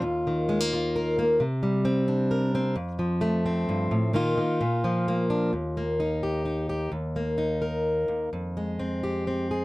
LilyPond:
\new Staff \with { instrumentName = "Steel-string acoustic guitar" } { \time 3/4 \key ees \major \tempo 4 = 130 << { f'4 aes16 bes16 f'8 bes'8 bes8 | r4 c'8 d'8 bes'8 c'8 | r4 a8 c'4. | <ees bes ees' f'>2 bes8 d'8 |
r8 bes8 ees'8 g'8 ees'8 g'8 | r8 bes8 ees'8 bes'4. | r8 aes8 c'8 g'8 c'8 aes'8 | } \\ { ees,8 ees2~ ees8 | c8 g2~ g8 | f,8 f4. g,8 a,8 | bes,8 ees8 bes,8 f4. |
ees,2. | ees,2~ ees,8 ees,8 | f,2. | } >> }